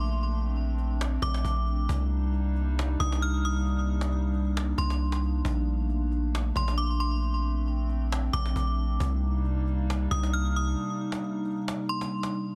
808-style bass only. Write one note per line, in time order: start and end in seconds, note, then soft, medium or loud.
0.00 1.18 A#1 loud
1.22 1.44 A#1 loud
1.45 1.87 A#1 loud
1.89 2.96 C2 loud
3.00 4.74 C2 loud
4.78 5.42 C2 loud
5.45 6.52 A#1 loud
6.56 8.30 A#1 loud
8.33 8.55 A#1 loud
8.56 8.99 A#1 loud
9.00 10.07 C2 loud
10.11 10.75 C2 loud